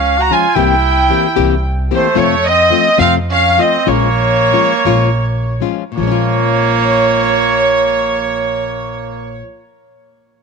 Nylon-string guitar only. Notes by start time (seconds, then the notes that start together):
0.30 F3 G#3 C#4 F4
0.55 C3 E3 A#3 C4 G4
1.09 E3 A#3 C4 G4
1.36 C3 E3 A#3 C4 G4
1.91 E3 A#3 C4 G4
2.15 F2 C3 F3 A3 C4 F4
2.70 F3 A3 C4 F4
2.98 F2 C3 F3 A3 C4 F4
3.57 F3 A3 C4 F4
3.86 A#2 F3 G#3 C#4 F4
4.52 F3 G#3 C#4 F4
4.85 A#2 F3 G#3 C#4 F4
5.60 F3 G#3 C#4 F4
5.92 A#2
5.98 F3
6.03 G#3
6.07 C#4
6.12 F4